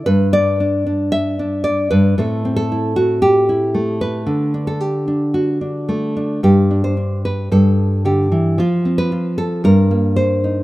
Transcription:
0.06 1.90 G2 medium
0.06 0.59 B4 loud
0.33 1.11 D5 loud
0.60 0.85 D4 soft
0.87 1.38 D4 soft
1.12 1.63 E5 loud
1.39 1.90 D4 medium
1.64 2.17 D5 loud
1.91 2.17 G2 medium
1.91 2.69 B4 loud
2.18 4.24 A2 medium
2.18 3.74 A3 medium
2.18 2.44 C4 medium
2.18 2.56 A4 medium
2.45 4.24 C4 medium
2.56 3.21 A4 medium
2.72 2.96 E4 soft
2.96 3.48 F#4 medium
3.22 4.00 G4 medium
3.49 4.24 E4 medium
3.74 4.83 A3 medium
4.01 4.67 B4 medium
4.27 6.40 D3 medium
4.54 5.06 D4 soft
4.67 4.80 A4 medium
4.80 5.34 G4 medium
5.08 5.60 D4 soft
5.34 6.43 F#4 medium
5.61 6.15 D4 soft
5.89 6.40 A3 medium
6.17 6.40 D4 soft
6.43 7.50 G2 medium
6.43 6.84 G4 medium
6.71 6.96 D4 soft
6.84 7.24 C5 medium
6.97 7.47 D4 soft
7.25 7.51 B4 medium
7.51 8.58 G2 medium
7.51 8.05 A4 medium
8.05 8.31 D3 medium
8.05 8.58 G4 medium
8.32 8.58 E3 medium
8.58 9.64 F3 medium
8.58 9.11 F4 medium
8.85 9.61 C4 soft
8.98 9.37 B4 medium
9.12 9.61 F4 soft
9.38 9.64 A4 medium
9.64 10.63 G2 medium
9.64 10.16 A#4 medium
9.91 10.63 A#3 soft
10.16 10.63 C5 medium
10.44 10.63 D#4 soft

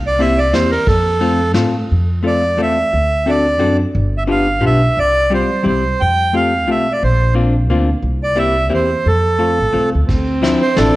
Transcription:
0.00 0.55 C2 medium
0.07 0.22 D5 medium
0.19 0.38 A#3 medium
0.19 0.38 C4 medium
0.19 0.38 E4 medium
0.19 0.38 G4 medium
0.19 0.40 E5 medium
0.19 ride soft
0.38 0.54 D5 medium
0.53 0.77 E2 medium
0.53 0.72 A#3 medium
0.53 0.72 C4 soft
0.53 0.72 E4 soft
0.53 0.72 G4 medium
0.53 0.71 C5 medium
0.53 snare medium
0.53 ride soft
0.72 0.87 A#4 medium
0.72 ride soft
0.87 1.57 F2 medium
0.87 1.52 A4 medium
0.87 kick medium
0.87 ride soft
1.21 1.40 A3 soft
1.21 1.40 C4 medium
1.21 1.40 F4 soft
1.21 1.40 A4 medium
1.21 ride soft
1.54 1.79 A2 medium
1.54 1.74 A3 medium
1.54 1.74 C4 medium
1.54 1.74 F4 medium
1.54 1.74 A4 medium
1.54 snare medium
1.54 ride soft
1.91 2.60 F2 medium
2.23 2.43 A3 soft
2.23 2.43 C4 soft
2.23 2.43 F4 soft
2.23 2.43 A4 soft
2.27 2.61 D5 medium
2.57 2.82 E2 medium
2.57 2.77 A3 soft
2.57 2.77 C4 soft
2.57 2.77 F4 soft
2.57 2.77 A4 medium
2.62 3.31 E5 medium
2.93 3.61 D2 medium
3.26 3.45 C4 soft
3.26 3.46 D4 soft
3.26 3.45 F#4 soft
3.26 3.46 A4 medium
3.26 3.77 D5 medium
3.59 3.83 F#2 medium
3.59 3.79 C4 medium
3.59 3.79 D4 soft
3.59 3.79 F#4 soft
3.59 3.79 A4 medium
3.95 4.62 G1 medium
4.18 4.23 E5 medium
4.27 4.46 B3 soft
4.27 4.46 D4 medium
4.27 4.47 F4 soft
4.27 4.47 G4 medium
4.27 4.64 F5 medium
4.61 4.84 B1 medium
4.61 4.80 B3 soft
4.61 4.80 D4 medium
4.61 4.80 F4 soft
4.61 4.80 G4 medium
4.66 4.99 E5 medium
4.97 5.41 C2 medium
4.97 5.33 D5 loud
5.30 5.49 G3 medium
5.30 5.49 C4 soft
5.30 5.49 F4 soft
5.30 5.49 G4 medium
5.34 5.65 C5 medium
5.63 5.88 C2 medium
5.63 5.83 G3 medium
5.63 5.83 C4 soft
5.63 5.83 E4 soft
5.63 5.83 G4 medium
5.63 6.01 C5 medium
6.01 6.68 F2 medium
6.01 6.35 G5 medium
6.33 6.52 A3 soft
6.33 6.52 C4 soft
6.33 6.53 F4 soft
6.33 6.52 G4 soft
6.33 6.70 F5 medium
6.67 6.90 B1 medium
6.67 6.86 A3 medium
6.67 6.86 C4 soft
6.67 6.86 F4 soft
6.67 6.87 G4 soft
6.67 6.93 E5 medium
6.93 7.03 D5 medium
7.03 7.70 A#1 medium
7.03 7.34 C5 medium
7.34 7.54 A#3 medium
7.34 7.54 C4 medium
7.34 7.54 D4 soft
7.34 7.54 F4 medium
7.70 7.92 D2 medium
7.70 7.88 A#3 medium
7.70 7.88 C4 medium
7.70 7.89 D4 medium
7.70 7.88 F4 medium
8.02 8.72 C2 medium
8.23 8.38 D5 medium
8.36 8.55 A#3 medium
8.36 8.55 C4 soft
8.36 8.55 E4 medium
8.36 8.55 G4 medium
8.36 8.73 E5 medium
8.69 8.94 E2 medium
8.69 8.89 A#3 medium
8.69 8.89 C4 soft
8.69 8.89 E4 soft
8.69 8.89 G4 medium
8.74 9.08 C5 medium
9.06 9.58 F2 medium
9.06 9.90 A4 medium
9.39 9.58 A3 soft
9.39 9.58 C4 soft
9.39 9.58 F4 soft
9.39 9.58 A4 medium
9.59 9.73 A1 medium
9.73 9.91 C2 medium
9.73 9.92 A3 medium
9.73 9.93 C4 soft
9.73 9.92 F4 soft
9.73 9.92 A4 medium
9.95 10.08 D2 medium
10.08 10.53 D2 medium
10.08 10.78 C4 medium
10.08 kick medium
10.08 ride soft
10.42 10.61 F3 medium
10.42 10.61 C4 medium
10.42 10.61 D4 medium
10.42 10.61 E4 medium
10.42 snare medium
10.42 ride soft
10.62 10.77 C5 medium
10.76 10.90 A1 medium
10.76 10.95 F3 medium
10.76 10.95 C4 medium
10.76 10.96 D4 medium
10.76 10.96 E4 medium
10.76 10.96 A4 medium
10.76 snare medium
10.76 ride soft

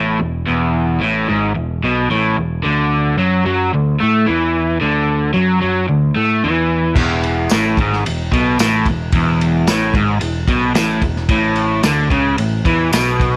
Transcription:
0.00 0.20 A1 medium
0.00 0.19 A2 loud
0.19 0.46 E1 medium
0.19 0.42 E2 medium
0.47 0.98 E1 medium
0.47 1.00 E2 loud
1.01 1.26 A1 medium
1.01 1.27 A2 loud
1.29 1.54 G#1 medium
1.29 1.55 G#2 loud
1.55 1.81 E1 medium
1.55 1.77 E2 medium
1.84 2.08 B1 loud
1.84 2.09 B2 loud
2.10 2.35 A1 medium
2.10 2.36 A2 loud
2.37 2.63 E1 medium
2.37 2.58 E2 medium
2.63 3.15 D2 medium
2.63 3.17 D3 loud
3.17 3.43 F#2 loud
3.17 3.44 F#3 loud
3.45 3.70 F#2 loud
3.45 3.71 F#3 loud
3.74 3.98 D2 medium
3.74 3.94 D3 medium
4.00 4.26 A2 medium
4.00 4.26 A3 medium
4.26 4.78 E2 medium
4.26 4.79 E3 loud
4.80 5.31 D2 medium
4.80 5.33 D3 loud
5.33 5.60 F#2 medium
5.33 5.60 F#3 loud
5.61 5.87 F#2 medium
5.61 5.87 F#3 loud
5.88 6.14 D2 medium
5.88 6.10 D3 medium
6.16 6.41 A2 medium
6.16 6.42 A3 medium
6.44 6.94 E2 medium
6.44 6.96 E3 loud
6.96 7.47 E1 medium
6.96 7.49 E2 loud
6.96 kick loud
6.96 crash medium
7.23 ride medium
7.49 7.77 A1 loud
7.49 7.77 A2 loud
7.49 snare loud
7.49 ride medium
7.49 tambourine medium
7.77 8.03 G#1 medium
7.77 8.05 G#2 loud
7.77 kick medium
7.77 ride medium
7.93 snare soft
8.06 8.31 E1 medium
8.06 8.27 E2 medium
8.06 ride medium
8.32 8.57 B1 loud
8.32 8.59 B2 loud
8.32 kick medium
8.32 ride medium
8.59 8.84 A1 medium
8.59 8.86 A2 loud
8.59 snare loud
8.59 ride loud
8.59 tambourine loud
8.86 9.11 E1 medium
8.86 9.09 E2 medium
8.86 kick medium
8.86 ride medium
9.12 9.63 E1 medium
9.12 9.67 E2 loud
9.12 kick loud
9.12 ride loud
9.41 ride medium
9.67 9.92 A1 loud
9.67 9.94 A2 loud
9.67 snare loud
9.67 ride loud
9.67 tambourine medium
9.94 10.19 G#1 loud
9.94 10.20 G#2 medium
9.94 kick medium
9.94 ride medium
10.20 10.46 E1 medium
10.20 10.42 E2 medium
10.20 ride loud
10.48 10.74 B1 loud
10.48 10.75 B2 loud
10.48 kick medium
10.48 ride medium
10.75 11.01 A1 loud
10.75 11.01 A2 loud
10.75 snare loud
10.75 ride loud
10.75 tambourine loud
11.02 11.27 E1 medium
11.02 11.24 E2 medium
11.02 kick medium
11.02 ride medium
11.16 snare soft
11.29 11.80 A1 medium
11.29 11.83 A2 loud
11.29 kick loud
11.29 ride medium
11.55 ride medium
11.83 12.09 D2 loud
11.83 12.10 D3 loud
11.83 snare loud
11.83 ride medium
11.83 tambourine medium
12.11 12.36 C#2 loud
12.11 12.37 C#3 loud
12.11 kick medium
12.11 ride medium
12.38 12.63 A1 medium
12.38 12.60 A2 medium
12.38 ride loud
12.65 12.91 E2 loud
12.65 12.92 E3 loud
12.65 kick medium
12.65 ride medium
12.93 13.37 B1 medium
12.93 13.37 B2 loud
12.93 snare loud
12.93 ride loud
12.93 tambourine loud
13.20 kick medium
13.20 ride medium

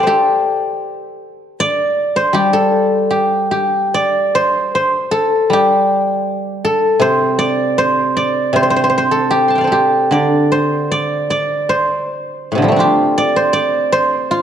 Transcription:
0.00 2.01 C5 soft
0.00 1.60 D5 soft
0.00 1.63 F5 soft
0.00 1.47 G5 soft
0.00 1.34 A5 soft
0.00 1.17 C6 soft
0.07 2.34 G4 medium
0.07 2.26 A4 soft
1.60 3.45 D5 medium
2.16 4.14 C5 medium
2.33 4.73 G3 soft
2.33 3.10 G4 medium
2.53 4.72 A4 medium
3.10 3.51 G4 medium
3.51 5.53 G4 medium
3.94 5.79 D5 medium
4.35 4.75 C5 medium
4.75 6.73 C5 medium
5.11 6.64 A4 medium
5.50 7.77 G3 soft
5.50 7.89 G4 medium
6.65 8.84 A4 medium
6.99 8.52 C3 medium
6.99 7.78 C5 medium
7.39 8.16 D5 medium
7.78 8.55 C5 medium
8.17 9.60 D5 medium
8.53 10.14 C3 medium
8.53 8.62 C5 medium
8.63 8.70 C5 medium
8.70 8.76 C5 medium
8.76 8.83 C5 medium
8.84 8.89 C5 medium
8.90 8.97 C5 medium
8.98 9.64 C5 medium
9.11 9.67 A4 medium
9.31 9.71 G4 medium
9.48 10.95 A5 soft
9.48 10.79 C6 soft
9.55 11.24 F5 soft
9.55 11.11 G5 soft
9.61 10.51 C5 soft
9.61 10.12 D5 soft
9.67 11.87 A4 soft
9.72 12.07 G4 medium
10.11 12.41 D3 soft
10.11 10.91 D5 medium
10.52 11.69 C5 medium
10.91 11.30 D5 medium
11.30 13.15 D5 medium
11.69 13.36 C5 medium
12.52 12.70 A2 soft
12.52 12.82 C3 soft
12.58 12.78 D3 soft
12.62 12.86 F3 soft
12.62 12.85 G3 soft
12.68 14.42 A3 soft
12.68 14.42 C4 soft
12.76 14.42 D4 soft
12.76 14.30 F4 soft
12.76 14.42 G4 medium
13.18 13.53 D5 medium
13.36 13.92 C5 medium
13.53 14.42 D5 medium
13.92 14.42 C5 medium
14.31 14.42 F4 medium

